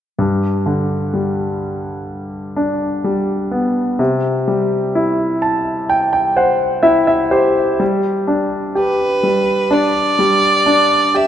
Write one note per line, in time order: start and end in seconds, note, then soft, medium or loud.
0.19 3.96 G2 soft
0.66 2.53 D3 soft
1.14 3.00 G3 soft
2.56 3.96 D4 soft
3.04 3.97 G3 soft
3.51 3.98 B3 soft
3.99 7.76 C3 soft
4.48 6.34 G3 soft
4.95 6.81 E4 soft
5.42 5.87 A5 soft
5.89 6.11 G5 medium
6.13 6.35 G5 soft
6.36 7.30 C5 soft
6.36 6.81 F#5 soft
6.83 7.77 E4 soft
6.83 7.06 E5 medium
7.07 7.30 E5 medium
7.31 7.78 G4 soft
7.31 7.76 C5 soft
7.80 9.22 G3 soft
8.27 9.69 D4 soft
8.75 10.62 G4 soft
8.75 9.75 B4 medium
9.23 10.17 G3 soft
9.71 10.65 D4 soft
9.71 11.17 D5 medium
10.19 11.27 G3 soft
10.66 11.27 D4 soft
11.14 11.27 G4 soft
11.14 11.27 E5 medium